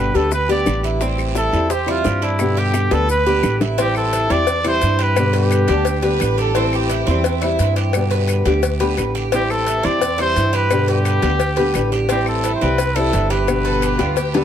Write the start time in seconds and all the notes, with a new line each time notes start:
Already playing: B2 D3 G3 B3 G4
0.00 B4
0.14 D2 D3 G3 B3 G4 A4 B4, short guiro, maracas
0.32 B4, muted nylon-string guitar stroke, high bongo, long guiro, maracas
0.49 D3 G3 B3 G4 D5, high bongo, maracas
0.66 A1 D3 G3 B3 G4, high bongo, low bongo, short guiro, claves, maracas
0.83 E4, high bongo, short guiro, maracas
1.01 E3 G3 C4 E4, high bongo, long guiro, maracas
1.18 high bongo, claves, maracas
1.35 E4 A4, high bongo, short guiro, maracas
1.53 E2 G3 C4 E4, short guiro, maracas
1.70 G4 C5, muted nylon-string guitar stroke, high bongo, long guiro, maracas
1.86 G3 C4 E4, high bongo, claves, maracas
1.90 F4
2.03 G2 E3 G3 C4 E4 G4, high bongo, low bongo, short guiro, maracas
2.22 D4 E4, high bongo, short guiro, maracas
2.39 B2 D3 G3 B3 G4, high bongo, long guiro, claves, maracas
2.57 G4, high bongo, maracas
2.73 high bongo, short guiro, claves, maracas
2.91 D2 D3 G3 B3 G4 A4 B4, high bongo, short guiro, maracas
3.09 B4, muted nylon-string guitar stroke, long guiro, maracas
3.26 D3 G3 B3 G4, maracas
3.43 A1 D3 G3 B3 G4, low bongo, short guiro, claves, maracas
3.61 E4, low bongo, short guiro, maracas
3.77 E3 G3 C4 E4 G4, cowbell, long guiro, maracas
3.95 A4, claves, maracas
4.13 E4, cowbell, short guiro, maracas
4.30 E2 G3 C4 E4 D5, short guiro, maracas
4.47 muted nylon-string guitar stroke, cowbell, long guiro, maracas
4.64 G3 C4 E4 C5, cowbell, claves, maracas
4.81 G2 E3 G3 C4, cowbell, short guiro, maracas
4.99 G4 B4, cowbell, short guiro, maracas
5.16 B2 D3 G3 B3 G4, cowbell, long guiro, claves, maracas
5.33 G4 B4, cowbell, maracas
5.51 cowbell, short guiro, claves, maracas
5.68 D2 D3 G3 B3 D4 G4, cowbell, short guiro, maracas
5.85 muted nylon-string guitar stroke, cowbell, long guiro, maracas
6.02 D3 G3 B3 G4 B4, cowbell, maracas
6.20 A1 D3 G3 B3 G4, cowbell, short guiro, claves, maracas
6.37 G4 A4, short guiro, maracas
6.55 E3 G3 C4 E4, cowbell, long guiro, maracas
6.73 G4, claves, maracas
6.89 E4, cowbell, short guiro, maracas
7.07 E2 G3 C4 E4, short guiro, maracas
7.24 muted nylon-string guitar stroke, cowbell, long guiro, maracas
7.42 G3 C4 E4, cowbell, claves, maracas
7.59 G2 E3 G3 C4 E4, cowbell, short guiro, maracas
7.76 G4, cowbell, short guiro, maracas
7.93 B2 D3 G3 B3 G4, cowbell, long guiro, claves, maracas
8.10 B4, cowbell, maracas
8.28 cowbell, short guiro, claves, maracas
8.45 D2 D3 G3 B3 G4, cowbell, short guiro, maracas
8.63 muted nylon-string guitar stroke, cowbell, long guiro, maracas
8.80 D3 G3 B3 G4 B4, cowbell, maracas
8.97 A1 D3 G3 B3 G4, cowbell, short guiro, claves, maracas
9.15 G4, short guiro, maracas
9.32 E3 G3 C4 E4 G4, cowbell, long guiro, maracas
9.50 A4, claves, maracas
9.66 E4, cowbell, short guiro, maracas
9.83 E2 G3 C4 E4 D5, short guiro, maracas
10.01 muted nylon-string guitar stroke, cowbell, long guiro, maracas
10.18 G3 C4 E4 C5, cowbell, claves, maracas
10.36 G2 E3 G3 C4 E4, cowbell, short guiro, maracas
10.53 G4 B4, cowbell, short guiro, maracas
10.70 B2 D3 G3 B3 G4, cowbell, long guiro, claves, maracas
10.88 G4 B4, cowbell, maracas
11.05 cowbell, short guiro, claves, maracas
11.22 D2 D3 G3 B3 G4, cowbell, short guiro, maracas
11.40 muted nylon-string guitar stroke, cowbell, long guiro, maracas
11.56 D3 G3 B3 G4 B4, cowbell, maracas
11.74 A1 D3 G3 B3 G4, cowbell, short guiro, claves, maracas
11.92 G4, short guiro, maracas
12.09 E3 G3 C4 E4 G4, cowbell, long guiro, maracas
12.26 A4, claves, maracas
12.44 E4, cowbell, short guiro, maracas
12.55 C5
12.61 C2 G3 C4 E4 B4, short guiro, maracas
12.78 muted nylon-string guitar stroke, cowbell, long guiro, maracas
12.96 G3 C4 E4 A4, cowbell, claves, maracas
13.13 G1 E3 G3 C4 E4, cowbell, short guiro, maracas
13.30 G4 B4, cowbell, short guiro, maracas
13.47 B2 D3 G3 B3 G4, cowbell, long guiro, claves, maracas
13.65 A4 B4, cowbell, maracas
13.81 G4, cowbell, short guiro, claves, maracas
13.99 D2 D3 G3 B3 F4 G4, cowbell, high bongo, short guiro, maracas
14.16 G4, muted nylon-string guitar stroke, cowbell, long guiro, maracas
14.34 D3 G3 B3 G4 A4 B4, cowbell, low bongo, maracas